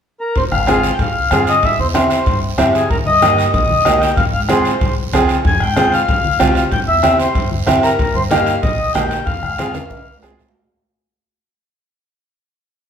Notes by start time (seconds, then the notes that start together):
0.21 A#4
0.35 F1 C5, bombo low, high conga, high timbale, long guiro
0.52 G#1 F5, bombo rim, high conga
0.67 C4 F4 G#4, bombo rim, high conga, high timbale, short guiro
0.83 high timbale, short guiro
0.93 G5
0.99 C2 F5, bombo low, high conga, low conga, high timbale, long guiro
1.31 G2 C4 F4 G#4, bombo rim, high conga, high timbale, short guiro
1.47 D#5, high timbale, short guiro
1.63 C2 E5, bombo low, high conga, high timbale, long guiro
1.79 E2 C5, high conga
1.94 C4 E4 G4 C5, bombo rim, high conga, high timbale, short guiro
2.10 high timbale, short guiro
2.26 G2, bombo low, high conga, low conga, high timbale, long guiro
2.58 G2 C4 E4 G4, bombo rim, high conga, low conga, high timbale, short guiro
2.74 G#4, high timbale, short guiro
2.90 D#2 A#4, bombo low, high conga, high timbale, long guiro
3.06 G2 D#5, high conga
3.22 A#3 D#4 G4, bombo rim, high conga, high timbale, short guiro
3.38 high timbale, short guiro
3.53 A#1 D#5, bombo low, high conga, low conga, high timbale, long guiro
3.70 high conga
3.85 C2 A#3 D#4 G4, bombo rim, high conga, high timbale, low timbale, short guiro
4.01 G5, high timbale, short guiro
4.17 F2 F5, bombo low, high conga, low conga, high timbale, long guiro
4.33 G#2 F5
4.49 C4 F4 G#4 C5, bombo rim, high conga, high timbale, short guiro
4.65 high timbale, short guiro
4.81 C2, bombo low, high conga, low conga, high timbale, long guiro
5.12 C2 C4 F4 G#4, bombo rim, high conga, low conga, high timbale, short guiro
5.29 high timbale, short guiro
5.45 F2 G#5, bombo low, high conga, high timbale, long guiro
5.60 G#2 G5, bombo rim
5.76 C4 F4 G#4, bombo rim, high conga, high timbale, short guiro
5.92 F5, high timbale, short guiro
6.08 C2, bombo low, high conga, low conga, high timbale, long guiro
6.25 high conga
6.39 C2 C4 F4 G4, bombo low, bombo rim, high conga, high timbale, low timbale, short guiro
6.55 F5, high timbale, short guiro
6.72 C2 G5, bombo low, high conga, low conga, high timbale, long guiro
6.87 E2 E5
7.03 C4 E4 G4, bombo rim, high conga, high timbale, short guiro
7.20 C5, high timbale, short guiro
7.35 G2, bombo low, high conga, low conga, high timbale, long guiro
7.51 high conga
7.66 G2 C4 E4 G4, bombo rim, high conga, low conga, high timbale, short guiro
7.83 A#4, high timbale, short guiro
7.99 D#2, bombo low, high conga, high timbale, long guiro
8.14 G2 C5, high conga
8.30 A#3 D#4 G4 F5, bombo rim, high conga, high timbale, short guiro
8.46 high timbale, short guiro
8.62 A#1 D#5, bombo low, high conga, low conga, high timbale, long guiro
8.94 A#1 A#3 D#4 G4 G5, bombo rim, high conga, high timbale, low timbale, short guiro
9.11 high timbale, short guiro
9.26 F2 F5, bombo low, high conga, high timbale, long guiro
9.43 G#2, bombo rim, high conga
9.58 C4 F4 G#4, bombo rim, high conga, high timbale, short guiro
9.74 high conga, high timbale, short guiro
9.86 high timbale
9.90 C2, bombo low, high conga, long guiro
9.97 high timbale
10.07 high timbale
10.17 low timbale
10.22 C2 C4 F4 G#4, bombo rim, short guiro
10.28 low timbale
10.39 low conga, low timbale, short guiro
10.49 low timbale